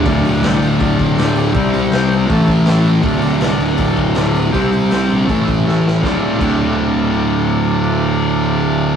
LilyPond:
<<
  \new Staff \with { instrumentName = "Transistor combo organ" } { \time 4/4 \key d \minor \tempo 4 = 161 <a' d'' f''>8 r8 <a' d'' g''>8 r8 <a' d'' f''>8 r8 <a' d'' g''>8 r8 | <g' c'' e''>8 r8 <g' c'' g''>8 r8 <a' cis'' e''>8 r8 <a' cis'' e''>8 r8 | <a' d'' f''>8 r8 <a' d'' f''>8 r8 <a' d'' f''>8 r8 <a' d'' f''>8 r8 | <g' c'' e''>8 r8 <g' c'' e''>8 r8 <a' cis'' e''>8 r8 <a' cis'' e''>8 r8 |
<a' d'' f''>1~ | <a' d'' f''>1 | }
  \new Staff \with { instrumentName = "Distorted electric guitar" } { \clef bass \time 4/4 \key d \minor <d, a, d>1 | <c g c'>2 <a, e a>2 | <d, a, d>1 | <c g c'>2 <a, e a>2 |
<d, a, d>8 r8 <d, a, d>2.~ | <d, a, d>1 | }
  \new Staff \with { instrumentName = "Picked electric bass" } { \clef bass \time 4/4 \key d \minor d,,8 d,,8 c,8 d,,8 d,,8 d,,8 d,,4 | c,8 c,8 c,8 c,8 a,,8 a,,8 a,,4 | d,,8 d,,8 c,8 d,,8 d,,8 d,,8 d,,4 | c,8 c,8 c,8 bes,,8 a,,8 a,,8 a,,4 |
d,,8 r8 d,,2.~ | d,,1 | }
  \new DrumStaff \with { instrumentName = "Drums" } \drummode { \time 4/4 <hho bd>8 hho8 <hho sn>8 hho8 <hho bd>8 <hho bd>8 <hho sn>8 hho8 | <hho bd>8 hho8 <hho sn>8 hho8 <hho bd>8 <hho bd>8 <hho sn>8 hho8 | <hho bd>8 hho8 <hho sn>8 hho8 <hho bd>8 <hho bd>8 <hho sn>8 hho8 | <hho bd>8 hho8 <hho sn>8 hho8 <hho bd>8 <hho bd>8 sn8 sn8 |
<bd sn>4 <cymc bd>4 r4 r4 | r4 r4 r4 r4 | }
>>